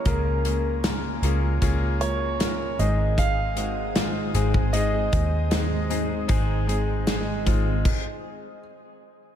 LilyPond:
<<
  \new Staff \with { instrumentName = "Ambient pad" } { \time 4/4 \key aes \mixolydian \tempo 4 = 77 << { <bes' bes''>2.~ <bes' bes''>8 <c'' ees'' ees'''>8~ | <c'' ees'' ees'''>1~ | <c'' ees'' ees'''>2 r2 | } \\ { aes''1~ | aes''1~ | aes''2 r2 | } >> }
  \new Staff \with { instrumentName = "Grand piano" } { \time 4/4 \key aes \mixolydian bes'2~ bes'8 des''4 ees''8 | f''4. r8 ees''2~ | ees''2. r4 | }
  \new Staff \with { instrumentName = "Grand piano" } { \time 4/4 \key aes \mixolydian <bes des' f' aes'>8 <bes des' f' aes'>8 <bes des' f' bes'>8 <bes des' f' aes'>8 <bes des' f' aes'>8 <bes des' f' bes'>8 <bes des' f' bes'>8 <aes c' ees' aes'>8~ | <aes c' ees' aes'>8 <aes c' ees' ges'>8 <aes c' ees' f'>8 <aes c' ees' aes'>8 <aes c' ees' aes'>8 <aes c' ees' aes'>8 <aes c' ees' aes'>8 <aes c' ees' aes'>8 | <aes c' ees' aes'>8 <aes c' ees' aes'>8 <aes c' ees' aes'>8 <aes c' ees' f'>8 r2 | }
  \new Staff \with { instrumentName = "Grand piano" } { \clef bass \time 4/4 \key aes \mixolydian des4. r2 aes,8~ | aes,4 r2 r8 aes,8~ | aes,4 r2. | }
  \new Staff \with { instrumentName = "Steel-string acoustic guitar" } { \time 4/4 \key aes \mixolydian <des aes des' f' bes'>8 <aes des' f' bes'>8 <des aes des' f' bes'>8 <aes des' f' bes'>16 <des' f' bes'>8 <des' f' bes'>16 <aes des' f' bes'>8 <des aes des' f' bes'>8 <aes, ees aes c' ees' aes'>8~ | <aes, ees aes c' ees' aes'>8 <aes c' ees' aes'>8 <aes, ees aes c' ees' aes'>8 <aes c' ees' aes'>16 <aes c' ees' aes'>8 <aes c' ees' aes'>16 <aes c' ees' aes'>8 <aes, ees aes c' ees' aes'>8. <aes c' ees' aes'>16 | <aes, ees aes c' ees' aes'>8 <aes c' ees' aes'>8 <aes, ees aes c' ees' aes'>8 <aes c' ees' aes'>16 <aes c' ees' aes'>16 r2 | }
  \new Staff \with { instrumentName = "Fingered electric bass" } { \clef bass \time 4/4 \key aes \mixolydian des,4. des,8 des,4. aes,,8~ | aes,,4. aes,,4 ees,4. | aes,,4. aes,,8 r2 | }
  \new DrumStaff \with { instrumentName = "Drums" } \drummode { \time 4/4 <hh bd>8 hh8 <hh sn>8 hh8 <hh bd>8 hh8 <hh sn>8 hh8 | <hh bd>8 hh8 <hh sn>8 hh16 bd16 hh8 <hh bd>8 <hh sn>8 hh8 | <hh bd>8 hh8 <hh sn>8 <hh bd>8 <cymc bd>4 r4 | }
>>